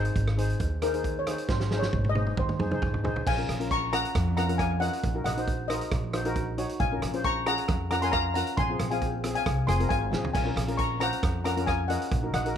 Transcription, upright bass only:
0.16 0.52 G#1 loud
0.60 1.32 D#2 medium
1.49 1.85 G#1 loud
1.93 2.29 G#1 loud
2.37 2.55 D#2 loud
2.59 2.79 F#1 medium
2.82 3.02 G#1 medium
3.04 3.24 A#1 medium
3.27 3.44 A#1 loud
3.49 4.03 A#1 loud
4.15 4.87 F2 loud
5.04 5.21 A#1 loud
5.25 5.79 A#1 medium
5.91 6.64 A#1 loud
6.80 6.98 A#1 loud
7.02 7.56 A#1 loud
7.69 8.41 F2 loud
8.58 8.76 A#1 loud
8.79 9.34 A#1 loud
9.46 9.64 C2 loud
9.67 9.88 F1 medium
9.90 10.10 G#1 medium
10.11 10.32 A#1 medium
10.35 10.53 A#1 loud
10.56 11.10 A#1 loud
11.23 11.95 F2 loud
12.11 12.29 A#1 loud
12.34 12.57 A#1 loud

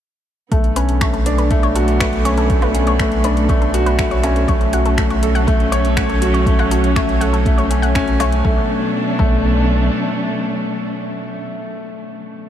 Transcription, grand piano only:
0.52 0.75 A3 medium
0.76 1.00 C#4 medium
1.01 1.15 A3 medium
1.26 1.50 D4 medium
1.51 1.65 A3 loud
1.76 1.99 F#4 loud
2.00 2.14 A3 medium
2.25 2.49 C#4 medium
2.50 2.73 A3 medium
2.75 2.98 C#4 medium
3.00 3.14 A3 medium
3.24 3.48 D4 medium
3.49 3.63 A3 loud
3.74 3.97 F#4 loud
3.99 4.13 A3 medium
4.23 4.47 C#4 medium
4.48 4.72 A3 medium
4.73 4.97 F#4 medium
4.98 5.12 A3 medium
5.23 5.46 A4 medium
5.47 5.61 A3 loud
5.72 5.96 C#5 loud
5.97 6.11 A3 medium
6.22 6.45 F#4 medium
6.46 6.70 A3 medium
6.71 6.95 F#4 medium
6.96 7.10 A3 medium
7.21 7.44 A4 medium
7.46 7.60 A3 loud
7.71 7.85 C#4 medium
7.95 8.09 C#4 loud
8.20 8.43 A3 medium
8.45 8.59 A3 medium
9.19 9.33 A3 loud

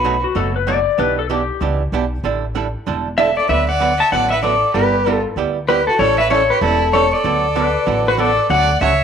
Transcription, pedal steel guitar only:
0.00 0.21 B4 medium
3.18 3.36 E5 medium
3.37 3.49 D5 medium
3.49 3.69 E5 medium
3.69 4.01 F#5 medium
4.00 4.12 A5 medium
4.12 4.32 F#5 medium
4.30 4.43 E5 medium
4.43 4.75 D5 medium
4.74 5.21 B4 medium
5.68 5.87 B4 medium
5.87 6.00 A4 medium
5.99 6.18 C#5 medium
6.18 6.30 E5 loud
6.31 6.50 C#5 medium
6.50 6.62 B4 medium
6.62 6.94 A4 medium
6.93 7.13 C#5 medium
7.13 8.15 D5 medium
8.08 8.20 B4 medium
8.20 8.52 D5 medium
8.50 8.79 F#5 loud
8.81 9.04 E5 loud

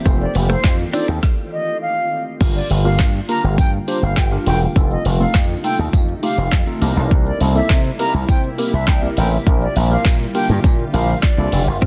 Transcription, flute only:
0.21 0.33 D5 medium
0.50 0.75 C5 medium
0.94 1.06 D5 medium
1.53 1.78 D#5 medium
1.82 2.23 F5 medium
2.56 2.68 D5 medium
2.85 3.10 F5 medium
3.29 3.42 A#5 medium
3.58 3.71 G5 medium
4.02 4.15 F5 medium
4.17 4.30 G5 medium
4.47 4.59 G5 medium
4.91 5.03 D#5 medium
5.20 5.45 F5 medium
5.64 5.77 G5 medium
6.23 6.65 F5 medium
7.26 7.39 D5 medium
7.56 7.81 E5 medium
7.99 8.12 A#5 medium
8.29 8.42 G5 medium
8.73 8.86 E5 medium
8.88 9.00 G5 medium
9.17 9.30 G5 medium
9.62 9.74 D5 medium
9.91 10.16 F5 medium
10.35 10.47 G5 medium
10.93 11.19 F5 medium
11.23 11.65 D5 medium

